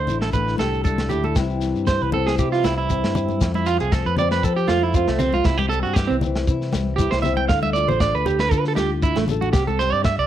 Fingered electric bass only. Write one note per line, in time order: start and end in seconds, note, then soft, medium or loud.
0.08 0.32 A1 medium
0.34 0.58 A1 medium
0.60 1.08 C2 medium
1.12 1.35 D2 medium
1.36 1.73 C2 medium
1.75 2.00 G2 medium
2.02 2.37 C2 medium
2.39 2.63 C3 medium
2.65 3.01 C2 medium
3.04 3.39 G2 medium
3.41 3.78 F2 medium
3.81 4.05 C2 medium
4.06 4.41 F2 medium
4.44 4.67 F3 medium
4.69 5.06 F2 medium
5.08 5.43 C2 medium
5.45 5.82 C2 loud
5.85 6.09 G2 medium
6.11 6.45 C2 medium
6.48 6.72 C3 medium
6.73 7.10 C2 medium
7.13 7.47 C2 medium
7.50 7.86 D2 loud
7.89 8.13 A1 medium
8.15 8.49 D2 medium
8.51 8.75 D3 medium
8.77 9.14 D2 medium
9.16 9.51 A1 medium
9.53 9.90 C2 loud
9.92 10.16 G2 medium
10.18 10.27 C2 medium